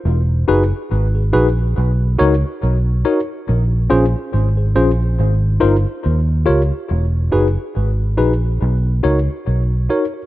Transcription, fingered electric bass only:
0.05 0.45 E1 loud
0.49 0.71 F#1 medium
0.91 1.31 G#1 loud
1.35 1.74 A#1 loud
1.78 2.17 B1 loud
2.21 2.42 C#2 loud
2.63 3.03 B1 loud
3.49 3.88 A#1 loud
3.92 4.13 A#1 loud
4.34 4.74 G#1 medium
4.76 5.16 A#1 medium
5.19 5.59 G#1 loud
5.63 5.84 G1 loud
6.06 6.45 D#2 loud
6.49 6.70 C#2 medium
6.91 7.30 E1 loud
7.34 7.56 F#1 medium
7.77 8.16 G#1 medium
8.19 8.59 A#1 medium
8.62 9.02 B1 loud
9.05 9.27 C#2 medium
9.47 9.87 B1 medium

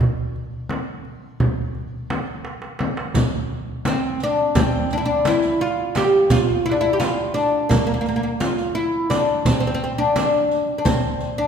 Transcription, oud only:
0.00 2.42 D4 medium
3.87 4.23 C4 medium
4.23 4.56 D4 medium
4.56 4.92 C4 medium
4.93 4.97 D4 medium
4.98 5.05 E4 medium
5.05 5.27 D4 medium
5.27 5.61 E4 medium
5.61 5.97 F4 loud
5.97 6.31 G4 medium
6.31 6.65 F4 loud
6.66 6.73 E4 medium
6.71 6.79 D4 medium
6.81 6.93 E4 medium
6.93 6.99 G4 medium
7.00 7.34 F4 medium
7.34 7.71 D4 medium
7.69 7.78 A#3 medium
7.79 7.85 A#3 medium
7.87 7.93 A#3 medium
7.94 8.00 A#3 medium
8.01 8.07 A#3 medium
8.08 8.15 A#3 medium
8.16 8.22 A#3 medium
8.23 8.31 A#3 medium
8.40 8.74 F4 medium
8.75 9.10 E4 medium
9.10 9.45 D4 medium
9.46 9.51 C4 medium
9.52 9.59 C4 medium
9.60 9.66 C4 medium
9.67 9.73 C4 medium
9.74 9.82 C4 medium
9.84 9.91 C4 medium
9.98 10.15 D4 medium
10.16 10.77 D4 medium
10.78 10.85 D4 medium
10.85 11.39 C4 medium
11.38 11.47 D4 medium

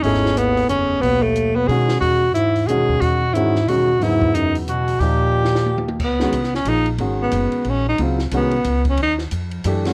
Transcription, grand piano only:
0.04 0.96 A3 medium
0.04 0.96 D#4 medium
0.04 0.95 E4 medium
0.04 0.96 G#4 medium
1.69 2.19 D#3 medium
1.69 2.19 G#3 medium
1.69 2.19 C#4 soft
1.69 2.20 F#4 medium
2.69 3.18 D#3 medium
2.69 3.18 G#3 medium
2.69 3.19 C#4 medium
2.69 3.19 F#4 medium
3.35 3.53 D#3 medium
3.35 3.54 G#3 medium
3.35 3.54 C#4 medium
3.35 3.54 F#4 medium
3.68 3.86 D#3 medium
3.68 3.87 G#3 medium
3.68 3.87 C#4 soft
3.68 3.87 F#4 medium
4.02 4.93 C#3 medium
4.02 4.94 F#3 medium
4.02 4.94 B3 soft
4.02 4.94 E4 medium
5.01 5.92 F3 medium
5.01 5.93 A#3 medium
5.01 5.93 D#4 soft
5.01 5.93 G4 medium
6.21 6.32 D#3 medium
6.21 6.32 G#3 medium
6.21 6.33 C#4 medium
6.21 6.33 F#4 medium
6.66 6.85 F3 soft
6.66 6.85 A#3 soft
6.66 6.85 D#4 soft
6.66 6.86 G#4 medium
6.99 7.91 D#3 medium
6.99 7.92 G#3 soft
6.99 7.92 C#4 soft
6.99 7.92 F#4 medium
7.99 8.17 C#3 medium
7.99 8.18 F#3 soft
7.99 8.18 C4 medium
7.99 8.18 F4 medium
8.33 8.51 D#3 medium
8.33 8.51 G#3 medium
8.33 8.51 C#4 medium
8.33 8.52 F#4 medium
9.65 9.83 E3 medium
9.65 9.83 A3 medium
9.65 9.84 D4 medium
9.65 9.84 G4 medium
9.85 9.93 D#3 medium
9.85 9.93 G#3 soft
9.85 9.93 C#4 medium
9.85 9.93 F#4 medium

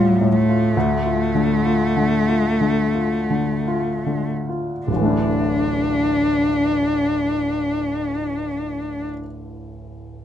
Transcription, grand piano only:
0.00 0.21 A2 soft
0.00 0.49 F4 soft
0.21 0.65 A2 soft
0.49 0.76 F4 soft
0.77 2.58 D2 soft
1.06 1.53 F4 soft
1.35 1.84 D3 soft
1.66 2.16 F4 soft
1.96 2.48 D3 soft
2.28 2.81 F4 soft
2.61 3.16 D3 soft
2.95 3.52 F4 soft
3.30 3.91 D3 soft
3.67 4.32 F4 soft
4.06 4.72 D3 soft
4.49 4.88 F4 soft
4.87 9.04 D1 soft
4.92 9.09 A1 soft
4.96 9.13 E3 soft
5.01 9.18 A3 soft
5.01 9.22 D4 soft
5.10 9.26 E4 soft

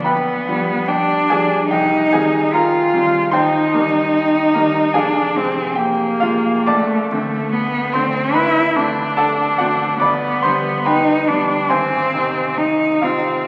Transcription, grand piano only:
0.04 0.47 B1 soft
0.04 0.85 B4 medium
0.04 0.85 G5 medium
0.04 0.89 B5 medium
0.48 1.26 F3 soft
0.48 1.26 G3 soft
0.48 1.27 D4 soft
0.88 1.27 G4 medium
0.88 1.27 D5 soft
0.88 1.30 G5 medium
1.30 1.68 F3 soft
1.30 1.69 G3 soft
1.30 1.69 D4 soft
1.30 1.69 G#4 soft
1.30 1.72 G#5 medium
1.71 2.12 C2 soft
1.71 2.10 G4 medium
1.71 2.10 D#5 medium
1.71 2.12 G5 medium
2.13 2.90 D#3 soft
2.13 2.90 G3 soft
2.13 2.91 C4 soft
2.13 2.51 G#4 medium
2.13 2.53 G#5 medium
2.53 2.91 A#4 medium
2.53 2.93 A#5 medium
2.94 3.29 D#3 soft
2.94 3.29 G3 soft
2.94 3.30 C4 soft
3.31 3.72 D#2 medium
3.31 4.51 C5 medium
3.31 4.51 G5 medium
3.31 4.54 C6 medium
3.74 4.51 D#3 soft
3.74 4.51 G3 soft
3.74 4.51 A#3 soft
4.53 4.91 D#3 soft
4.53 4.91 G3 soft
4.53 4.92 A#3 soft
4.53 4.92 A#4 soft
4.53 4.95 A#5 medium
4.94 5.35 F1 soft
4.94 5.74 G#4 medium
4.94 5.74 F5 medium
4.94 5.77 G#5 medium
5.36 6.19 C3 soft
5.36 6.19 G#3 soft
5.75 6.19 G4 medium
5.75 6.22 G5 medium
6.20 6.64 C3 soft
6.20 6.65 G#3 soft
6.20 6.65 F4 medium
6.20 6.68 F5 medium
6.67 7.10 F#1 medium
6.67 7.89 D5 medium
6.67 7.89 A5 medium
6.67 7.93 D6 medium
7.11 7.90 D3 medium
7.11 7.90 A3 soft
7.11 7.90 C4 medium
7.93 8.31 D3 soft
7.93 8.31 A3 soft
7.93 8.32 C4 soft
7.93 8.33 C5 medium
7.93 8.35 C6 medium
8.34 8.75 F#1 soft
8.34 9.13 B4 medium
8.34 9.17 B5 medium
8.75 9.55 D3 soft
8.75 9.55 A3 soft
8.75 9.55 C4 soft
9.17 9.56 A4 medium
9.17 9.56 F#5 medium
9.17 9.59 A5 medium
9.58 9.97 D3 soft
9.58 9.98 A3 soft
9.58 9.98 C4 soft
9.58 9.98 F#4 medium
9.58 10.01 F#5 medium
10.00 10.42 G1 medium
10.00 10.41 D5 medium
10.00 10.41 B5 medium
10.00 10.43 D6 medium
10.42 11.24 D3 soft
10.42 11.24 G3 soft
10.42 11.24 B3 soft
10.42 10.83 C5 medium
10.42 10.85 C6 medium
10.85 11.67 B4 medium
10.85 11.67 G5 medium
10.85 11.70 B5 medium
11.29 11.67 D3 soft
11.29 11.67 G3 soft
11.29 11.67 B3 soft
11.69 12.12 G#1 soft
11.69 12.99 C5 medium
11.69 12.99 G#5 medium
11.69 13.03 C6 medium
12.14 12.99 C3 soft
12.14 13.00 C4 soft
12.14 13.00 D#4 soft
13.02 13.47 C3 soft
13.02 13.47 C4 soft
13.02 13.47 D#4 soft
13.02 13.47 F4 soft
13.02 13.47 F5 medium

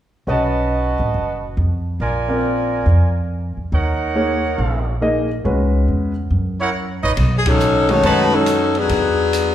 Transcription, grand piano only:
0.27 0.93 C#4 medium
0.27 0.94 F#4 soft
0.27 0.94 B4 soft
0.27 0.94 D#5 soft
2.28 2.83 C4 soft
2.28 2.83 F4 soft
2.28 2.83 A#4 soft
2.28 2.84 D5 medium
4.15 4.41 A#3 soft
4.15 4.41 D#4 soft
4.15 4.42 G#4 soft
4.15 4.42 C#5 medium
5.01 5.27 A#3 medium
5.01 5.28 D#4 medium
5.01 5.28 G#4 medium
5.01 5.28 D#5 medium
5.44 6.11 G#3 medium
5.44 6.11 C#4 medium
5.44 6.11 F#4 soft
5.44 6.12 B4 medium
7.89 8.44 D#3 medium
7.89 8.44 G#3 medium
7.89 8.44 C#4 medium
7.89 8.45 F#4 medium

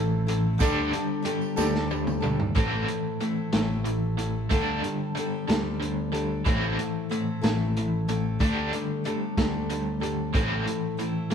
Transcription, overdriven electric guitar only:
0.00 0.25 A2 medium
0.00 0.25 E3 medium
0.29 0.57 A2 medium
0.29 0.57 E3 medium
0.61 0.91 D3 medium
0.61 0.91 G3 medium
0.61 0.92 D4 medium
0.94 1.22 D3 medium
0.94 1.23 G3 medium
1.25 1.55 D3 medium
1.25 1.54 G3 medium
1.58 1.87 D3 medium
1.58 1.87 G3 medium
1.91 2.20 D3 medium
1.91 2.20 G3 medium
2.22 2.52 D3 medium
2.22 2.52 G3 medium
2.55 2.86 A2 medium
2.55 2.86 E3 medium
2.55 2.86 C4 medium
2.87 3.17 A2 medium
2.87 3.17 E3 medium
3.21 3.50 A2 medium
3.21 3.50 E3 medium
3.53 3.82 A2 medium
3.53 3.82 E3 medium
3.85 4.14 A2 medium
3.85 4.14 E3 medium
4.18 4.47 A2 medium
4.18 4.48 E3 medium
4.50 4.81 D3 medium
4.50 4.81 G3 medium
4.50 4.81 D4 medium
4.82 5.12 D3 medium
4.82 5.12 G3 medium
5.15 5.44 D3 medium
5.15 5.44 G3 medium
5.48 5.77 D3 medium
5.48 5.77 G3 medium
5.80 6.09 D3 medium
5.80 6.10 G3 medium
6.12 6.42 D3 medium
6.12 6.42 G3 medium
6.45 6.76 A2 medium
6.45 6.76 E3 medium
6.45 6.77 C4 loud
6.79 7.08 A2 medium
6.79 7.08 E3 medium
7.11 7.40 A2 medium
7.11 7.40 E3 medium
7.44 7.73 A2 medium
7.44 7.73 E3 medium
7.77 8.06 A2 medium
7.77 8.06 E3 medium
8.09 8.37 A2 medium
8.09 8.38 E3 medium
8.40 8.71 D3 medium
8.40 8.71 G3 medium
8.40 8.71 D4 loud
8.73 9.02 D3 medium
8.73 9.02 G3 medium
9.05 9.34 D3 medium
9.05 9.35 G3 medium
9.38 9.67 D3 medium
9.38 9.67 G3 medium
9.70 9.99 D3 medium
9.70 9.99 G3 medium
10.02 10.31 D3 medium
10.02 10.32 G3 medium
10.34 10.64 A2 medium
10.34 10.65 E3 medium
10.34 10.65 C4 medium
10.66 10.96 A2 medium
10.66 10.96 E3 medium
10.99 11.28 A2 medium
10.99 11.29 E3 medium
11.31 11.34 A2 medium
11.31 11.34 E3 medium

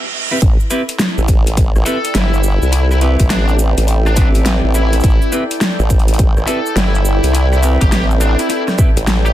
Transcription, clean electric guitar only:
0.31 0.38 C4 medium
0.31 0.38 E4 medium
0.31 0.38 G4 medium
0.31 0.38 B4 medium
0.70 0.82 C4 medium
0.70 0.82 E4 medium
0.70 0.81 G4 medium
0.70 0.81 B4 loud
1.86 1.97 C4 medium
1.86 1.97 E4 medium
1.86 1.97 G4 medium
1.86 1.97 B4 medium
3.01 4.14 C4 medium
3.01 4.14 E4 medium
3.01 4.14 G4 medium
3.01 4.14 B4 medium
4.17 5.30 C4 medium
4.17 5.30 E4 medium
4.17 5.30 G4 medium
4.17 5.30 B4 loud
5.32 5.43 C4 medium
5.32 5.43 E4 medium
5.32 5.43 G4 medium
5.32 5.43 B4 medium
6.47 6.58 C4 medium
6.47 6.58 E4 medium
6.47 6.58 G4 medium
6.47 6.58 B4 loud
7.63 8.76 C4 medium
7.63 8.76 E4 medium
7.63 8.76 G4 medium
7.63 8.76 B4 medium
8.78 8.89 C4 medium
8.78 8.89 E4 medium
8.78 8.89 G4 medium
8.78 8.89 B4 medium

